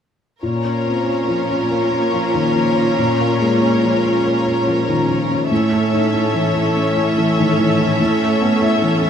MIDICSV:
0, 0, Header, 1, 5, 480
1, 0, Start_track
1, 0, Tempo, 852273
1, 241, Time_signature, 3, 2, 24, 8
1, 2160, Tempo, 829876
1, 5205, End_track
2, 0, Start_track
2, 0, Title_t, "Violin section"
2, 0, Program_c, 0, 48
2, 238, Note_on_c, 0, 70, 36
2, 241, Note_on_c, 0, 73, 36
2, 3100, Note_off_c, 0, 70, 0
2, 3101, Note_off_c, 0, 73, 0
2, 3122, Note_on_c, 0, 73, 38
2, 3124, Note_on_c, 0, 76, 40
2, 5205, Note_off_c, 0, 73, 0
2, 5205, Note_off_c, 0, 76, 0
2, 5205, End_track
3, 0, Start_track
3, 0, Title_t, "Viola section"
3, 0, Program_c, 1, 48
3, 240, Note_on_c, 1, 61, 36
3, 241, Note_on_c, 1, 65, 36
3, 3101, Note_off_c, 1, 61, 0
3, 3101, Note_off_c, 1, 65, 0
3, 3130, Note_on_c, 1, 61, 40
3, 3131, Note_on_c, 1, 69, 39
3, 5205, Note_off_c, 1, 61, 0
3, 5205, Note_off_c, 1, 69, 0
3, 5205, End_track
4, 0, Start_track
4, 0, Title_t, "Grand piano"
4, 0, Program_c, 2, 0
4, 241, Note_on_c, 2, 46, 35
4, 342, Control_c, 2, 64, 127
4, 360, Note_on_c, 2, 61, 25
4, 488, Note_on_c, 2, 60, 24
4, 553, Note_off_c, 2, 61, 0
4, 603, Note_on_c, 2, 61, 25
4, 605, Note_off_c, 2, 60, 0
4, 723, Note_on_c, 2, 53, 28
4, 795, Note_off_c, 2, 61, 0
4, 842, Note_on_c, 2, 61, 25
4, 915, Note_off_c, 2, 53, 0
4, 963, Note_on_c, 2, 58, 24
4, 1034, Note_off_c, 2, 61, 0
4, 1077, Note_on_c, 2, 61, 28
4, 1155, Note_off_c, 2, 58, 0
4, 1197, Note_on_c, 2, 53, 27
4, 1271, Note_off_c, 2, 61, 0
4, 1317, Note_on_c, 2, 51, 25
4, 1392, Note_off_c, 2, 53, 0
4, 1439, Note_on_c, 2, 53, 27
4, 1440, Note_off_c, 2, 51, 0
4, 1561, Note_on_c, 2, 61, 30
4, 1633, Note_off_c, 2, 53, 0
4, 1660, Note_off_c, 2, 46, 0
4, 1682, Note_on_c, 2, 46, 35
4, 1691, Control_c, 2, 64, 0
4, 1753, Note_off_c, 2, 61, 0
4, 1770, Control_c, 2, 64, 127
4, 1803, Note_on_c, 2, 58, 29
4, 1917, Note_on_c, 2, 56, 25
4, 1994, Note_off_c, 2, 58, 0
4, 2038, Note_on_c, 2, 61, 27
4, 2039, Note_off_c, 2, 56, 0
4, 2157, Note_on_c, 2, 53, 26
4, 2232, Note_off_c, 2, 61, 0
4, 2286, Note_on_c, 2, 61, 27
4, 2354, Note_off_c, 2, 53, 0
4, 2404, Note_on_c, 2, 58, 27
4, 2478, Note_off_c, 2, 61, 0
4, 2525, Note_on_c, 2, 61, 29
4, 2597, Note_off_c, 2, 58, 0
4, 2644, Note_on_c, 2, 53, 28
4, 2717, Note_off_c, 2, 61, 0
4, 2766, Note_on_c, 2, 51, 27
4, 2836, Note_off_c, 2, 53, 0
4, 2883, Note_on_c, 2, 53, 28
4, 2885, Note_off_c, 2, 51, 0
4, 3006, Note_on_c, 2, 61, 29
4, 3076, Note_off_c, 2, 53, 0
4, 3101, Note_off_c, 2, 46, 0
4, 3125, Note_off_c, 2, 61, 0
4, 3128, Note_on_c, 2, 45, 36
4, 3134, Control_c, 2, 64, 0
4, 3218, Control_c, 2, 64, 127
4, 3250, Note_on_c, 2, 64, 29
4, 3372, Note_on_c, 2, 63, 27
4, 3442, Note_off_c, 2, 64, 0
4, 3490, Note_off_c, 2, 63, 0
4, 3493, Note_on_c, 2, 64, 29
4, 3609, Note_on_c, 2, 52, 29
4, 3682, Note_off_c, 2, 64, 0
4, 3728, Note_on_c, 2, 64, 30
4, 3800, Note_off_c, 2, 52, 0
4, 3850, Note_on_c, 2, 61, 29
4, 3919, Note_off_c, 2, 64, 0
4, 3972, Note_on_c, 2, 64, 31
4, 4041, Note_off_c, 2, 61, 0
4, 4092, Note_on_c, 2, 52, 31
4, 4162, Note_off_c, 2, 64, 0
4, 4212, Note_on_c, 2, 51, 28
4, 4282, Note_off_c, 2, 52, 0
4, 4330, Note_off_c, 2, 51, 0
4, 4333, Note_on_c, 2, 52, 32
4, 4456, Note_on_c, 2, 64, 33
4, 4521, Note_off_c, 2, 52, 0
4, 4545, Note_off_c, 2, 45, 0
4, 4570, Note_on_c, 2, 45, 39
4, 4578, Control_c, 2, 64, 0
4, 4642, Note_off_c, 2, 64, 0
4, 4686, Control_c, 2, 64, 127
4, 4688, Note_on_c, 2, 61, 32
4, 4807, Note_on_c, 2, 59, 31
4, 4876, Note_off_c, 2, 61, 0
4, 4920, Note_on_c, 2, 64, 33
4, 4924, Note_off_c, 2, 59, 0
4, 5042, Note_on_c, 2, 52, 34
4, 5112, Note_off_c, 2, 64, 0
4, 5159, Note_on_c, 2, 64, 34
4, 5205, Note_off_c, 2, 45, 0
4, 5205, Note_off_c, 2, 52, 0
4, 5205, Note_off_c, 2, 64, 0
4, 5205, End_track
5, 0, Start_track
5, 0, Title_t, "Cello section"
5, 0, Program_c, 3, 48
5, 244, Note_on_c, 3, 46, 38
5, 3103, Note_off_c, 3, 46, 0
5, 3124, Note_on_c, 3, 45, 42
5, 5205, Note_off_c, 3, 45, 0
5, 5205, End_track
0, 0, End_of_file